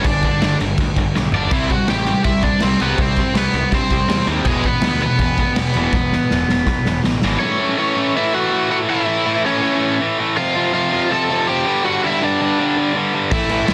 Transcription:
0.04 picked electric bass G1, distorted electric guitar G2 D3, overdriven electric guitar D4 D5, kick, crash
0.22 distorted electric guitar G2 D3, kick, crash
0.42 picked electric bass G1, distorted electric guitar G2 D3, snare, crash
0.60 picked electric bass G1, distorted electric guitar G2 D3, crash
0.78 picked electric bass D2, distorted electric guitar G2 D3, kick, crash
0.96 picked electric bass G1, distorted electric guitar G2 D3, kick, crash
1.15 picked electric bass B1, distorted electric guitar G2 D3, snare
1.32 picked electric bass G1, distorted electric guitar G2 D3 G3, overdriven electric guitar D4 D5, floor tom
1.51 picked electric bass C2, distorted electric guitar C3 G3 C4, overdriven electric guitar E4 E5, kick, crash
1.70 distorted electric guitar C3 G3, overdriven electric guitar F#4 F#5, kick, crash
1.88 picked electric bass A1, distorted electric guitar C3 G3, overdriven electric guitar G4 G5, snare, crash
2.06 distorted electric guitar C3 G3, crash
2.24 picked electric bass C2, distorted electric guitar C3 G3, overdriven electric guitar E4 E5, kick, crash
2.42 distorted electric guitar C3 G3, overdriven electric guitar D4 D5, kick, crash
2.60 picked electric bass C2, distorted electric guitar C3 G3, overdriven electric guitar C4 C5, snare, crash
2.80 picked electric bass C2, distorted electric guitar C3 G3 C4, overdriven electric guitar B3 B4, crash
2.98 picked electric bass C2, distorted electric guitar C3 G3, overdriven electric guitar C4 C5, kick, crash
3.16 distorted electric guitar C3 G3, kick, crash
3.34 picked electric bass C2, distorted electric guitar C3 G3, overdriven electric guitar B3 B4, snare, crash
3.53 picked electric bass C2, distorted electric guitar C3 G3, crash
3.71 picked electric bass G2, distorted electric guitar C3 G3, overdriven electric guitar C4 C5, kick, crash
3.90 picked electric bass C2, distorted electric guitar C3 G3, kick, crash
4.08 picked electric bass E2, distorted electric guitar C3 G3, snare, crash
4.27 picked electric bass D#2, distorted electric guitar C3 G3 C4, crash
4.45 picked electric bass E1, distorted electric guitar E2 B2, overdriven electric guitar G#3 G#4, kick, crash
4.49 distorted electric guitar E3
4.64 distorted electric guitar E2 B2, overdriven electric guitar B3 B4, kick, crash
4.81 picked electric bass D2, distorted electric guitar E2 B2, snare, crash
5.01 distorted electric guitar E2 B2, overdriven electric guitar B3 B4, crash
5.18 picked electric bass E1, distorted electric guitar E2 B2, kick, crash
5.37 distorted electric guitar E2 B2, kick, crash
5.56 picked electric bass E1, distorted electric guitar E2 B2, snare, crash
5.74 picked electric bass E1, distorted electric guitar E2 B2 E3, crash
5.92 picked electric bass E1, distorted electric guitar E2 B2, kick, snare
6.12 distorted electric guitar E2 B2, snare
6.30 picked electric bass E1, distorted electric guitar E2 B2, snare
6.49 picked electric bass E1, distorted electric guitar E2 B2, snare
6.66 picked electric bass B1, distorted electric guitar E2 B2, kick, snare
6.85 picked electric bass E1, distorted electric guitar E2 B2, snare
7.04 picked electric bass A1, distorted electric guitar E2 B2, snare
7.22 picked electric bass G#1, distorted electric guitar E2 B2 E3, snare
7.40 distorted electric guitar A2 E3 A3, overdriven electric guitar C#4 C#5
7.59 distorted electric guitar A2 E3 A3
7.78 distorted electric guitar A2 E3 A3, overdriven electric guitar C#4 C#5
7.96 distorted electric guitar A2 E3 A3
8.15 distorted electric guitar A2 E3 A3, overdriven electric guitar E4 E5
8.34 distorted electric guitar A2 E3 A3, overdriven electric guitar F#4 F#5
8.52 distorted electric guitar A2 E3 A3
8.70 distorted electric guitar A2 E3 A3, overdriven electric guitar F#4 F#5
8.88 distorted electric guitar A2 E3 A3, overdriven electric guitar E4 E5
9.07 distorted electric guitar A2 E3 A3
9.26 distorted electric guitar A2 E3 A3
9.45 distorted electric guitar A2 E3 A3, overdriven electric guitar C#4 C#5
9.62 distorted electric guitar A2 E3 A3
9.80 distorted electric guitar A2 E3 A3
10.01 distorted electric guitar A2 E3 A3
10.18 distorted electric guitar A2 E3 A3
10.37 distorted electric guitar F2 C3 F3, overdriven electric guitar F4 F5
10.56 distorted electric guitar F2 C3 F3
10.73 distorted electric guitar F2 C3 F3, overdriven electric guitar F4 F5
10.92 distorted electric guitar F2 C3 F3
11.10 distorted electric guitar F2 C3 F3, overdriven electric guitar A4 A5
11.30 distorted electric guitar F2 C3 F3
11.47 distorted electric guitar F2 C3 F3, overdriven electric guitar G4 G5
11.66 distorted electric guitar G2 D3 G3
11.84 distorted electric guitar G2 D3 G3, overdriven electric guitar F#4 F#5
12.04 distorted electric guitar G2 D3 G3, overdriven electric guitar E4 E5
12.22 distorted electric guitar G2 D3 G3, overdriven electric guitar D4 D5
12.41 distorted electric guitar G2 D3 G3
12.59 distorted electric guitar G2 D3 G3
12.77 distorted electric guitar G2 D3 G3
12.96 distorted electric guitar G2 D3 G3
13.14 distorted electric guitar G2 D3 G3
13.31 picked electric bass A1, distorted electric guitar A2 E3 A3, overdriven electric guitar E4 E5, kick, crash
13.49 picked electric bass A1, distorted electric guitar A2 E3 A3, crash
13.67 distorted electric guitar A2 E3, overdriven electric guitar A3 E4 E5, snare, crash

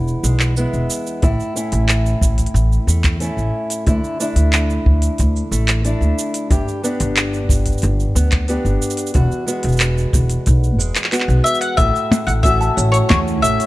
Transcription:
Already playing: upright bass E1, steel-string acoustic guitar E2 G#3 B3 E4
0.08 shaker
0.23 upright bass B1, steel-string acoustic guitar G#3, shaker
0.40 clap, shaker
0.57 steel-string acoustic guitar G#3 B3 E4, shaker
0.73 upright bass E1, shaker
0.90 shaker
1.07 shaker
1.22 upright bass A1, steel-string acoustic guitar A2 E4, kick, open hi-hat, shaker
1.40 shaker
1.56 steel-string acoustic guitar A3 C#4 E4, shaker
1.72 upright bass A1, open hi-hat, shaker
1.89 clap, open hi-hat, shaker
2.06 shaker
2.21 upright bass A1, kick, shaker
2.38 kick, open hi-hat, shaker
2.46 open hi-hat
2.54 upright bass A1, shaker
2.72 shaker
2.87 upright bass E2, steel-string acoustic guitar A3, shaker
3.04 kick, clap, open hi-hat, shaker
3.20 steel-string acoustic guitar A3 C#4 E4, open hi-hat, shaker
3.37 upright bass A1, shaker
3.70 open hi-hat, shaker
3.86 upright bass D2, steel-string acoustic guitar D3 E4, kick, open hi-hat, shaker
4.04 shaker
4.20 steel-string acoustic guitar A3 D4 E4, shaker
4.36 upright bass D2, open hi-hat, shaker
4.53 clap, open hi-hat, shaker
4.70 shaker
4.86 upright bass D2, kick
5.02 open hi-hat, shaker
5.18 upright bass D2, kick, open hi-hat, shaker
5.36 shaker
5.51 upright bass A1, steel-string acoustic guitar A3, shaker
5.68 clap, open hi-hat, shaker
5.84 steel-string acoustic guitar A3 D4 E4, open hi-hat, shaker
6.01 upright bass D2, shaker
6.19 shaker
6.34 open hi-hat, shaker
6.50 upright bass G1, steel-string acoustic guitar G2 G4, kick, open hi-hat, shaker
6.68 shaker
6.83 steel-string acoustic guitar B3 D4 G4, shaker
7.00 upright bass G1, open hi-hat, shaker
7.17 clap, open hi-hat, shaker
7.34 shaker
7.49 upright bass G1, kick, shaker
7.66 kick, open hi-hat, shaker
7.72 shaker
7.78 shaker
7.82 upright bass G1, open hi-hat, shaker
8.00 shaker
8.15 upright bass D2, steel-string acoustic guitar B3, shaker
8.32 kick, clap, open hi-hat
8.48 steel-string acoustic guitar B3 D4 G4, open hi-hat, shaker
8.65 upright bass G1, shaker
8.82 shaker
8.90 shaker
8.97 open hi-hat, shaker
9.07 shaker
9.14 upright bass E1, steel-string acoustic guitar E2 F#4, kick, open hi-hat, shaker
9.32 shaker
9.46 steel-string acoustic guitar G#3 B3 F#4, shaker
9.63 upright bass E1, open hi-hat, shaker
9.68 shaker
9.72 shaker
9.77 clap, open hi-hat, shaker
9.81 shaker
9.98 shaker
10.13 upright bass E1, kick, shaker
10.30 open hi-hat, shaker
10.46 upright bass B1, kick, open hi-hat, shaker
10.64 shaker
10.78 upright bass E1, steel-string acoustic guitar G#3, shaker
10.95 clap, open hi-hat, shaker
11.04 clap
11.12 steel-string acoustic guitar G#3 B3 F#4, clap, open hi-hat, shaker
11.20 clap
11.28 upright bass B1, shaker
11.44 mandolin E5, shaker
11.55 shaker
11.61 mandolin F#5, open hi-hat
11.77 upright bass A1, steel-string acoustic guitar A2, ambient pad A3, music box A4, mandolin E5, kick, open hi-hat, shaker
11.96 shaker
12.12 ambient pad E4, percussion blips, shaker
12.27 upright bass A1, ambient pad F#4, mandolin F#5, open hi-hat, shaker
12.43 steel-string acoustic guitar A3 C#4 F#4, ambient pad C#5, mandolin E5, kick, open hi-hat, shaker
12.61 music box A5, shaker
12.77 upright bass A1, music box C#5, shaker
12.92 mandolin C#5, music box C#5, open hi-hat, shaker
13.09 upright bass E2, steel-string acoustic guitar C#4, mandolin C#5, kick, clap, open hi-hat, percussion blips, shaker
13.28 shaker
13.42 upright bass A1, music box A4, mandolin E5, shaker
13.60 open hi-hat, shaker

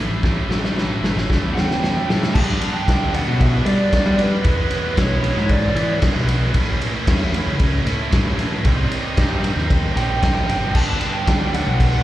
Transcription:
Already playing: distorted electric guitar A2 E3 A3 C#4 E4
0.09 picked electric bass A1
0.23 picked electric bass A1, distorted electric guitar A2 E3 A3 C#4 E4, kick, snare
0.49 picked electric bass A1, distorted electric guitar A2 E3 A3 C#4 E4, snare
0.65 snare
0.76 distorted electric guitar A2 E3 A3 C#4 E4, snare
1.02 picked electric bass A1, distorted electric guitar A2 E3 A3 C#4 E4, snare
1.16 picked electric bass G1, snare
1.29 distorted electric guitar A2 E3 A3 C#4 E4, kick, snare
1.43 picked electric bass E2
1.55 distorted electric guitar A2 E3 A3 C#4 E4, lead electric guitar G5, snare
1.71 snare
1.81 distorted electric guitar A2 E3 A3 C#4 E4, snare
2.08 distorted electric guitar A2 E3 A3 C#4 E4, picked electric bass A2, snare
2.23 snare
2.34 distorted electric guitar G2 D3 G3 B3 D4, picked electric bass G2, lead electric guitar A5, kick, crash
2.61 distorted electric guitar G3 B3 D4, ride
2.74 lead electric guitar G5
2.87 picked electric bass D2, distorted electric guitar G2 D3 G3 B3 D4, kick, snare, ride
3.14 distorted electric guitar G3 B3 D4, lead electric guitar F#5, ride
3.28 picked electric bass B2
3.40 lead electric guitar E5, kick, ride
3.66 picked electric bass G3, distorted electric guitar G3 B3 D4, lead electric guitar D5, ride
3.92 distorted electric guitar G2 D3 G3 B3 D4, kick, snare, ride
4.06 picked electric bass G3
4.18 distorted electric guitar G3 B3 D4, lead electric guitar B4, ride
4.44 picked electric bass E2, distorted electric guitar E3 G#3 B3 E4, kick, ride
4.71 distorted electric guitar G#3 B3 E4, ride
4.97 picked electric bass B1, distorted electric guitar E3 G#3 B3 E4, lead electric guitar C#5, kick, snare, ride
5.23 distorted electric guitar G#3 B3 E4, ride
5.37 picked electric bass G#2, snare
5.49 lead electric guitar D5, kick, ride
5.75 picked electric bass E3, distorted electric guitar G#3 B3 E4, ride
6.01 distorted electric guitar E3 G#3 B3 E4, kick, snare, ride
6.15 picked electric bass B1
6.28 distorted electric guitar G#3 B3 E4, ride
6.54 picked electric bass A1, distorted electric guitar A2 E3 A3 C#4 E4, kick, ride
6.80 distorted electric guitar A3 C#4 E4, ride
7.06 picked electric bass E2, distorted electric guitar A2 E3 A3 C#4 E4, kick, snare, ride
7.32 distorted electric guitar A3 C#4 E4, ride
7.47 picked electric bass C#2
7.59 kick, ride
7.86 picked electric bass A2, distorted electric guitar A3 C#4 E4, ride
8.12 distorted electric guitar A2 E3 A3 C#4 E4, kick, snare, ride
8.25 picked electric bass A2
8.38 distorted electric guitar A3 C#4 E4, ride
8.65 picked electric bass C2, distorted electric guitar C3 G3 C4 D#4, kick, ride
8.91 distorted electric guitar G3 C4 D#4, ride
9.17 picked electric bass G2, distorted electric guitar C3 G3 C4 D#4, kick, snare, ride
9.43 distorted electric guitar G3 C4 D#4, ride
9.56 picked electric bass D#2, snare
9.70 kick, ride
9.95 picked electric bass A#1, distorted electric guitar G3 C4 D#4, lead electric guitar G5, ride
10.22 picked electric bass A1, distorted electric guitar C3 G3 C4 D#4, kick, snare, ride
10.48 picked electric bass G1, distorted electric guitar G3 C4 D#4, ride
10.74 picked electric bass G1, distorted electric guitar G2 D3 G3 B3 D4, lead electric guitar A5, kick, crash
11.00 distorted electric guitar G3 B3 D4, ride
11.13 lead electric guitar G5
11.26 picked electric bass D2, distorted electric guitar G2 D3 G3 B3 D4, kick, snare, ride
11.52 distorted electric guitar G3 B3 D4, lead electric guitar F#5, ride
11.66 picked electric bass B1
11.80 kick, ride

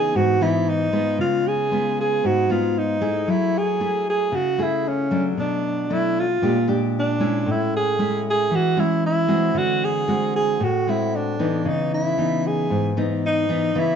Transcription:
Already playing: nylon-string guitar C#3 E3 B3 D#4, alto saxophone G#4
0.15 nylon-string guitar G#2, alto saxophone F#4
0.41 nylon-string guitar E3 B3 D#4, alto saxophone E4
0.69 alto saxophone D#4
0.93 nylon-string guitar G#3 B3 F4
1.19 nylon-string guitar C#3, alto saxophone F4
1.48 alto saxophone G#4
1.71 nylon-string guitar G#3 B3 F4
2.01 alto saxophone G#4
2.24 nylon-string guitar G#2, alto saxophone F#4
2.49 nylon-string guitar G#3 B3 F4, alto saxophone F4
2.78 alto saxophone D#4
3.01 nylon-string guitar A3 E4 G#4
3.28 nylon-string guitar F#3, alto saxophone E4
3.58 alto saxophone G#4
3.80 nylon-string guitar A3 E4 G#4
4.10 alto saxophone G#4
4.32 nylon-string guitar C#3, alto saxophone F#4
4.58 nylon-string guitar A3 E4 G#4
4.63 alto saxophone E4
4.88 alto saxophone C#4
5.11 nylon-string guitar F#3 A3 D4
5.37 nylon-string guitar B2, alto saxophone D4
5.90 nylon-string guitar F#3 A3 D4, alto saxophone E4
6.20 alto saxophone F4
6.42 nylon-string guitar A#2 G#3 D4 G4
6.67 nylon-string guitar G#3 D4 G4
7.00 alto saxophone D4
7.20 nylon-string guitar G#3 C#4 E4
7.46 nylon-string guitar A2
7.51 alto saxophone E4
7.77 alto saxophone G#4
7.99 nylon-string guitar G#3 C#4 E4
8.30 alto saxophone G#4
8.51 nylon-string guitar E3
8.56 alto saxophone F#4
8.77 nylon-string guitar G#3 C#4 E4, alto saxophone E4
9.06 alto saxophone E4
9.28 nylon-string guitar G#3 C4 F#4
9.54 nylon-string guitar D3, alto saxophone F#4
9.85 alto saxophone G#4
10.08 nylon-string guitar G#3 C4 F#4
10.36 alto saxophone G#4
10.60 nylon-string guitar A2, alto saxophone F#4
10.87 nylon-string guitar G#3 C4 F#4, alto saxophone E4
11.16 alto saxophone D4
11.39 nylon-string guitar E3 B3 D#4
11.65 nylon-string guitar C#3, alto saxophone D#4
11.94 alto saxophone E4
12.18 nylon-string guitar E3 B3 D#4
12.47 alto saxophone G#4
12.70 nylon-string guitar G#2
12.97 nylon-string guitar E3 B3 D#4
13.26 alto saxophone D#4
13.49 nylon-string guitar E3 B3 D#4
13.75 nylon-string guitar C#3 E3 B3, alto saxophone E4

